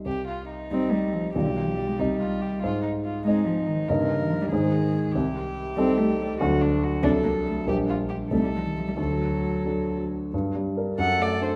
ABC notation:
X:1
M:6/8
L:1/16
Q:3/8=94
K:Cm
V:1 name="Violin"
G2 F2 E8 | G6 E2 F2 G2 | F2 E2 F2 E6 | B6 A6 |
[K:Gm] G12 | ^F2 D2 F2 A6 | G2 F2 G2 A6 | A8- A z3 |
z6 ^f2 d2 c2 |]
V:2 name="Grand piano"
C,,6 [G,Ee]6 | [=B,,,G,Fd]6 [C,,G,Ee]6 | A,,6 [CEe]6 | [G,,B,Ee]6 [A,,A,Ec]6 |
[K:Gm] C,,6 [G,EA]6 | [D,,^F,DA]6 [C,,F,DA]6 | [B,,,G,DB]6 [C,,G,EA]6 | D,,6 [^F,DA]6 |
G,,2 G,2 [DB]2 ^F,,2 A,2 [DA]2 |]
V:3 name="Cello" clef=bass
z6 C2 G,2 F,2 | E, D, E, F, G, A, G,6 | z6 A,2 F,2 E,2 | _D, C, D, E, F, G, E,6 |
[K:Gm] z6 C2 A,2 G,2 | z6 D2 B,2 A,2 | z6 A, G, F, E, F, G, | ^F,8- F,2 z2 |
z6 A6 |]